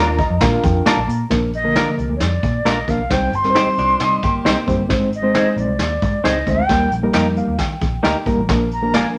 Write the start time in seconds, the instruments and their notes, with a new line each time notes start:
Already playing: picked electric bass D#2, reed electric piano D4 F4 A#4, flute A#5
0.18 reed electric piano D#5, kick, closed hi-hat
0.30 picked electric bass F2
0.40 picked electric bass A#2, reed electric piano D4 F4 A#4 F5, kick, snare, closed hi-hat
0.63 picked electric bass F2, reed electric piano G5, kick, closed hi-hat
0.86 clean electric guitar A#3 D4 F4 A#4, reed electric piano A5, muted picked electric bass stroke, snare, closed hi-hat
0.97 picked electric bass A#1
1.08 picked electric bass A#2, reed electric piano A#5, closed hi-hat
1.30 picked electric bass A#1, reed electric piano F3 A#3 D4 A#4, kick, snare, closed hi-hat
1.53 flute D#5, closed hi-hat
1.64 reed electric piano D3 F3 A#3 A#4
1.76 clean electric guitar A#3 D4 F4 A#4, snare, closed hi-hat
1.98 picked electric bass C2, closed hi-hat
2.09 picked electric bass D2
2.16 flute C#5, snare, closed hi-hat
2.21 picked electric bass F2, flute D5
2.43 picked electric bass A#2, kick, closed hi-hat
2.65 picked electric bass A#1, clean electric guitar A#3 D4 F4 A#4, flute D#5, snare, closed hi-hat
2.88 picked electric bass B1, reed electric piano F3 A#3 D4 A#4, flute F5, kick, closed hi-hat
3.10 picked electric bass C2, reed electric piano G3 C4 D#4 C5, flute G5, kick, snare, closed hi-hat
3.32 picked electric bass G1, flute C6, closed hi-hat
3.44 reed electric piano G3 C4 D#4 A#4, snare
3.50 reed electric piano C5
3.55 clean electric guitar C4 D#4 G4 C5, snare, closed hi-hat
3.66 muted picked electric bass stroke
3.78 picked electric bass C2, clean electric guitar F3 D4, closed hi-hat
4.00 picked electric bass C3, clean electric guitar G3 D#4, snare, closed hi-hat
4.23 picked electric bass G1, clean electric guitar A#3 G4, kick, closed hi-hat
4.45 picked electric bass C2, clean electric guitar C4 D#4 G4 C5, snare, closed hi-hat
4.67 picked electric bass F#1, reed electric piano G3 C4 D#4 C5, kick, closed hi-hat
4.78 picked electric bass G1
4.89 picked electric bass G#1, reed electric piano G#3 C4 D#4 C5, kick, snare, closed hi-hat
5.12 flute D#5, closed hi-hat
5.22 reed electric piano G#3 C4 D#4 C5
5.35 clean electric guitar C4 D#4 G#4 C5, snare, closed hi-hat
5.56 picked electric bass A#1, flute D5, closed hi-hat
5.68 picked electric bass C2
5.79 picked electric bass D#2, snare, closed hi-hat
6.02 picked electric bass G#2, kick, closed hi-hat
6.24 picked electric bass C#2, clean electric guitar C4 D#4 G#4 C5, flute D#5, snare, closed hi-hat
6.47 picked electric bass D2, reed electric piano G#3 C4 D#4 C5, kick, closed hi-hat
6.51 flute G5
6.69 picked electric bass D#2, reed electric piano G3 A#3 D#4 A#4, kick, snare, closed hi-hat
6.91 picked electric bass A#1, closed hi-hat
7.03 reed electric piano G3 A#3 D#4 A#4
7.13 picked electric bass F2, clean electric guitar A#3 D#4 G4 A#4, snare, closed hi-hat
7.36 reed electric piano F5, closed hi-hat
7.48 picked electric bass D#2
7.58 picked electric bass D#3, reed electric piano G5, kick, snare, closed hi-hat
7.81 picked electric bass A#1, kick, closed hi-hat
8.03 picked electric bass D2, clean electric guitar A#3 D#4 G4 A#4, reed electric piano G5, snare, closed hi-hat
8.26 picked electric bass G#1, reed electric piano G3 A#3 D#4 A#4 A#5, kick, closed hi-hat
8.38 picked electric bass A1
8.49 picked electric bass A#1, reed electric piano F3 A#3 D4 A#4, kick, snare, closed hi-hat
8.71 flute A#5, closed hi-hat
8.82 reed electric piano F3 A#3 D4 A#4
8.94 clean electric guitar A#3 D4 F4 A#4, flute G#5, snare, closed hi-hat